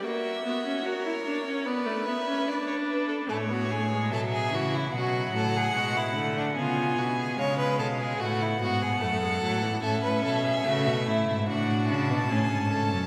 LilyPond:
<<
  \new Staff \with { instrumentName = "Violin" } { \time 4/4 \key fis \phrygian \tempo 4 = 73 e''4 cis''4 d''8 e''8 d''16 cis''16 b'16 a'16 | cis''4 e''4 fis''2 | gis''4 eis''4 fis''2 | \key a \major e''2 fis''8 a''4. | }
  \new Staff \with { instrumentName = "Violin" } { \time 4/4 \key fis \phrygian fis'8 fis'8 ais'4 b'2 | a'16 fis'16 gis'8 a'16 gis'16 fis'16 e'16 fis'8 a'16 gis'16 fis'16 e'8 d'16 | eis'8 fis'16 gis'16 cis''16 b'16 a'16 gis'16 fis'16 e'16 fis'16 gis'16 a'4 | \key a \major a'16 b'16 a'16 gis'16 fis'8 e'8 fis'4 gis'8 a'8 | }
  \new Staff \with { instrumentName = "Viola" } { \time 4/4 \key fis \phrygian ais8 b16 cis'16 fis'16 e'16 d'16 cis'16 b16 a16 b16 cis'16 d'4 | a16 b16 a16 gis16 fis8 e8 fis4 gis8 a8 | b4 gis4 a8 b8 a16 gis16 fis16 e16 | \key a \major cis'4 a4 d'4 cis'4 | }
  \new Staff \with { instrumentName = "Cello" } { \clef bass \time 4/4 \key fis \phrygian r1 | a,4 b,8 cis8 b,8 a,8 b,8 d8 | cis8 b,8 cis8 b,8 a,8 gis,8 fis,8 a,8 | \key a \major a,16 a,16 b,8 cis16 b,16 a,16 gis,16 a,8 cis16 b,16 a,16 gis,8 fis,16 | }
>>